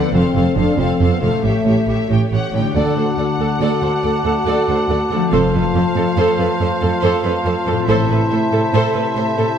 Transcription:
Already playing: harp F3 D4, french horn section B3, viola section A4, violin section D5 F#5
0.00 harp A3
0.04 harp C4
0.09 harp A4
0.13 double bass section F1, cello section F2, french horn section C4, viola section A4, violin section C5 F5
0.34 double bass section F1, cello section F2, viola section A4, violin section C5 F5
0.56 double bass section F1, cello section F2, french horn section D4, viola section A4, violin section C5 F5
0.77 double bass section F1, cello section F2, french horn section C4, viola section A4, violin section C5 F5
1.00 double bass section F1, cello section F2, viola section A4, violin section C5 F5
1.11 french horn section B3
1.21 double bass section F1, cello section F2, french horn section A3, viola section A4, violin section C5 F5
1.26 harp A2
1.31 harp A3
1.35 harp C#4
1.40 cello section A2, harp G4
1.44 double bass section A1, french horn section A3, viola section G4, violin section C#5 E5
1.65 double bass section A1, cello section A2, viola section G4, violin section C#5 E5
1.87 double bass section A1, cello section A2, viola section G4, violin section C#5 E5
2.09 double bass section A1, cello section A2, viola section G4, violin section C#5 G5
2.31 double bass section A1, cello section A2, viola section G4, violin section C#5 F#5
2.53 double bass section A1, cello section A2, viola section G4, violin section C#5 G5
2.57 harp D3
2.62 harp A3
2.66 harp D4
2.71 cello section D2, harp F#4, clarinet F#4, french horn section F#4
2.75 double bass section D2, french horn section A3, viola section A4, violin section D5 F#5, cor anglais D5, flute A5
2.95 cello section D2, viola section A4, violin section C5
3.17 cello section D2, viola section A4, violin section D5
3.39 cello section D2, viola section A4, violin section A4
3.60 cello section D2, viola section A4, violin section D5
3.82 cello section D2, viola section A4, violin section C5
4.03 cello section D2, viola section A4, violin section D5
4.24 cello section D2, violin section A4, viola section A4
4.46 cello section D2, viola section A4, violin section D5
4.68 cello section D2, viola section A4, violin section C5
4.89 cello section D2, viola section A4, violin section D5
5.11 cello section D2, violin section A4, viola section A4
5.15 harp F3
5.19 harp A3
5.24 harp C4
5.28 double bass section F1, cello section F2, harp F4, clarinet F4, viola section A4, violin section F5
5.33 french horn section F4, violin section C5, cor anglais C5
5.53 cello section F2, viola section A4, violin section B4
5.74 cello section F2, viola section A4, violin section C5
5.95 cello section F2, violin section A4, viola section A4
6.16 cello section F2, viola section A4, violin section C5
6.38 cello section F2, viola section A4, violin section B4
6.60 cello section F2, viola section A4, violin section C5
6.81 cello section F2, violin section A4, viola section A4
7.02 cello section F2, viola section A4, violin section C5
7.23 cello section F2, viola section A4, violin section B4
7.45 cello section F2, viola section A4, violin section C5
7.66 cello section F2, violin section A4, viola section A4
7.70 harp A2
7.75 harp A3
7.80 harp C4
7.84 cello section A2, harp E4, clarinet E4, flute A5
7.88 double bass section A1, french horn section C3 E4, viola section A4, violin section C5 E5
8.09 cello section A2, viola section A4, violin section B4
8.30 cello section A2, viola section A4, violin section C5
8.52 cello section A2, viola section A4, violin section A4
8.72 cello section A2, viola section A4, violin section C5
8.94 cello section A2, viola section A4, violin section B4
9.15 cello section A2, viola section A4, violin section C5
9.37 cello section A2, viola section A4, violin section A4

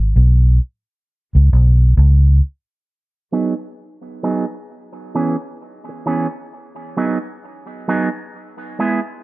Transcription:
Already playing: fingered electric bass G#1
0.16 fingered electric bass B1
1.35 fingered electric bass C#2
1.53 fingered electric bass B1
1.97 fingered electric bass C#2
3.32 clean electric guitar F#3 B3 D#4 G#4
4.23 clean electric guitar F#3 B3 D#4 G#4
5.15 clean electric guitar E3 B3 C#4 G#4
5.89 muted clean electric guitar stroke
6.06 clean electric guitar E3 B3 C#4 G#4
6.97 clean electric guitar F#3 B3 D#4 G#4
7.88 clean electric guitar F#3 B3 D#4 G#4
8.79 clean electric guitar G#3 B3 E4 G#4

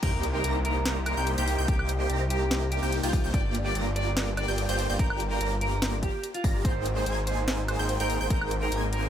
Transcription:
0.03 detuned saw bass C2, supersaw synth A#3 D#4 G4 C5 G5, clean electric guitar A#4, synth pluck G6, kick, closed hi-hat, crash, sub drop
0.23 closed hi-hat
0.35 clean electric guitar A#4
0.44 detuned saw bass C2, supersaw synth A#3 D#4 G4 C5 A#5, synth pluck A#6, closed hi-hat
0.65 clean electric guitar A#4, closed hi-hat
0.86 snare, closed hi-hat
1.06 clean electric guitar A#4, closed hi-hat, high woodblock
1.17 detuned saw bass C2, supersaw synth A#3 D#4 G4 C5 G5, synth pluck G6
1.27 closed hi-hat
1.38 detuned saw bass C2, supersaw synth A#3 D#4 G4 C5 G5, clean electric guitar G4, synth pluck G6, closed hi-hat
1.48 open hi-hat
1.58 detuned saw bass C2, supersaw synth A#3 D#4 G4 C5 G5, synth pluck G6
1.68 detuned saw bass C2, supersaw synth A#3 D#4 G4 C5 G5, clean electric guitar G4, synth pluck G6, kick, closed hi-hat
1.79 high woodblock
1.89 closed hi-hat
2.00 clean electric guitar G4
2.10 detuned saw bass C2, supersaw synth A#3 D#4 G4 C5 A#5, synth pluck A#6, closed hi-hat
2.30 clean electric guitar G4, closed hi-hat
2.51 snare, closed hi-hat
2.72 clean electric guitar G4, closed hi-hat
2.83 detuned saw bass C2, supersaw synth A#3 D#4 G4 C5 G5, synth pluck G6
2.92 closed hi-hat
3.03 detuned saw bass C2, supersaw synth A#3 D#4 G4 C5 G5, clean electric guitar F4, synth pluck G6, closed hi-hat
3.13 kick, open hi-hat
3.24 detuned saw bass C2, supersaw synth A#3 D#4 G4 C5 G5, synth pluck G6
3.34 detuned saw bass G1, supersaw synth A#3 F4 G4 D5 G5, clean electric guitar D5, synth pluck G6, kick, closed hi-hat
3.55 closed hi-hat
3.66 clean electric guitar D5
3.75 detuned saw bass G1, supersaw synth A#3 F4 G4 D5 A#5, synth pluck A#6, closed hi-hat
3.96 clean electric guitar D5, closed hi-hat
4.17 snare, closed hi-hat
4.37 clean electric guitar D5, closed hi-hat, high woodblock
4.48 detuned saw bass G1, supersaw synth A#3 F4 G4 D5 G5, synth pluck G6
4.58 closed hi-hat
4.69 detuned saw bass G1, supersaw synth A#3 F4 G4 D5 G5, clean electric guitar C5, synth pluck G6, closed hi-hat
4.79 open hi-hat
4.90 detuned saw bass G1, supersaw synth A#3 F4 G4 D5 G5, synth pluck G6
4.99 detuned saw bass G1, supersaw synth A#3 F4 G4 D5 G5, clean electric guitar A#4, synth pluck G6, kick, closed hi-hat
5.10 high woodblock
5.20 closed hi-hat
5.31 clean electric guitar A#4
5.41 detuned saw bass G1, supersaw synth A#3 F4 G4 D5 A#5, synth pluck A#6, closed hi-hat
5.61 clean electric guitar A#4, closed hi-hat
5.82 snare, closed hi-hat
6.03 clean electric guitar G4, kick, closed hi-hat
6.24 closed hi-hat
6.34 clean electric guitar F4, closed hi-hat
6.44 detuned saw bass G1, supersaw synth A#3 F4 G4 D5 A#5, synth pluck A#6, kick, open hi-hat
6.65 detuned saw bass G#1, supersaw synth A#3 D#4 G#4 C5 G5, clean electric guitar C5, synth pluck G6, kick, closed hi-hat
6.86 closed hi-hat
6.96 clean electric guitar C5
7.06 detuned saw bass G#1, supersaw synth A#3 D#4 G#4 C5 G#5, synth pluck G#6, closed hi-hat
7.27 clean electric guitar C5, closed hi-hat
7.48 snare, closed hi-hat
7.68 clean electric guitar C5, closed hi-hat, high woodblock
7.79 detuned saw bass G#1, supersaw synth A#3 D#4 G#4 C5 G5, synth pluck G6
7.89 closed hi-hat
8.00 detuned saw bass G#1, supersaw synth A#3 D#4 G#4 C5 G5, clean electric guitar A#4, synth pluck G6, closed hi-hat
8.10 open hi-hat
8.21 detuned saw bass G#1, supersaw synth A#3 D#4 G#4 C5 G5, synth pluck G6
8.30 detuned saw bass G#1, supersaw synth A#3 D#4 G#4 C5 G5, clean electric guitar A#4, synth pluck G6, kick, closed hi-hat
8.41 high woodblock
8.51 closed hi-hat
8.62 clean electric guitar A#4
8.72 detuned saw bass G#1, supersaw synth A#3 D#4 G#4 C5 G#5, synth pluck G#6, closed hi-hat
8.93 clean electric guitar A#4, closed hi-hat

